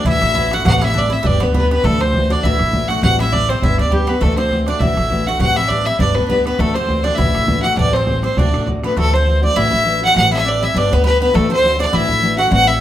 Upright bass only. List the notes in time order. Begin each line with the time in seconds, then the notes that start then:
0.05 A1
0.22 A1
0.65 A1
1.25 G1
1.41 D2
1.84 D2
2.43 A1
2.60 A1
3.03 A1
3.62 G1
3.78 D2
4.21 D2
4.80 A1
4.97 A1
5.39 A1
5.99 G1
6.16 D2
6.59 D2
7.18 A1
7.34 A1
7.77 A1
8.37 D2
8.54 A1
8.97 D2
9.56 A1
9.73 A1
10.16 A1
10.74 G1
10.92 D2
11.35 D2
11.92 A1
12.08 A1
12.51 A1